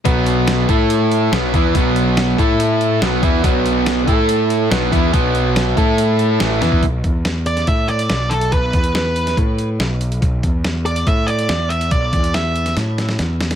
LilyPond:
<<
  \new Staff \with { instrumentName = "Lead electric guitar" } { \time 4/4 \key b \minor \tempo 4 = 142 r1 | r1 | r1 | r1 |
r4. d''8 e''8 d''4 a'8 | b'4 b'4 r2 | r4. d''8 e''8 d''4 e''8 | d''4 e''4 r2 | }
  \new Staff \with { instrumentName = "Tonewheel organ" } { \time 4/4 \key b \minor <d' fis' b' d''>4. <a e' a' e''>4. <d' fis' b' d''>4~ | <d' fis' b' d''>4. <a e' a' e''>4. <d' fis' b' d''>4~ | <d' fis' b' d''>4. <a e' a' e''>4. <d' fis' b' d''>4~ | <d' fis' b' d''>4. <a e' a' e''>4. <d' fis' b' d''>4 |
r1 | r1 | r1 | r1 | }
  \new Staff \with { instrumentName = "Overdriven electric guitar" } { \time 4/4 \key b \minor <b, fis b>4. <a e' a'>4. <b, fis b>8 <e b e'>8 | <b, fis b>4. <a e' a'>4. <b, fis b>8 <e b e'>8 | <b, fis b>4. <a e' a'>4. <b, fis b>8 <e b e'>8 | <b, fis b>4. <a e' a'>4. <a, e a>8 <e b e'>8 |
r1 | r1 | r1 | r1 | }
  \new Staff \with { instrumentName = "Overdriven electric guitar" } { \time 4/4 \key b \minor <b, fis b>4. <a e' a'>4. <b, fis b>8 <e b e'>8 | <b, fis b>4. <a e' a'>4. <b, fis b>8 <e b e'>8 | <b, fis b>4. <a e' a'>4. <b, fis b>8 <e b e'>8 | <b, fis b>4. <a e' a'>4. <a, e a>8 <e b e'>8 |
r1 | r1 | r1 | r1 | }
  \new Staff \with { instrumentName = "Picked electric bass" } { \clef bass \time 4/4 \key b \minor b,,4. a,4. b,,8 e,8 | b,,4. a,4. b,,8 e,8 | b,,4. a,4. b,,8 e,8 | b,,4. a,4. a,,8 e,8 |
b,,8 e,4. a,4 b,,4 | b,,8 e,4. a,4 b,,4 | b,,8 e,4. a,4 e,4 | b,,8 e,4. a,4 e,4 | }
  \new DrumStaff \with { instrumentName = "Drums" } \drummode { \time 4/4 <hh bd>8 hh8 <hh sn>8 <hh bd>8 hh8 hh8 <hh sn>8 <hh bd>8 | <hh bd>8 hh8 <hh sn>8 <hh bd>8 hh8 hh8 <hh sn>8 <hh bd>8 | <hh bd>8 hh8 <hh sn>8 <hh bd>8 hh8 hh8 <hh sn>8 <hh bd>8 | <hh bd>8 hh8 <hh sn>8 <hh bd>8 hh8 hh8 <hh sn>8 <hh sn>16 bd16 |
<hh bd>8 <hh bd>8 <hh sn>8 hh16 <hh sn>16 <hh bd>8 hh16 hh16 <hh sn>8 hh16 hh16 | <hh bd>8 <hh bd>16 hh16 <hh sn>8 hh16 <hh sn>16 <hh bd>8 hh8 <hh sn>8 hh16 hh16 | <hh bd>8 <hh bd>8 <hh sn>8 hh16 hh16 <hh bd>8 hh16 hh16 <hh sn>8 hh16 hh16 | <hh bd>8 <hh bd>16 hh16 <hh sn>8 hh16 <hh sn>16 <hh sn>8 <hh sn>16 sn16 <hh sn>8 <hh sn>16 <hh sn>16 | }
>>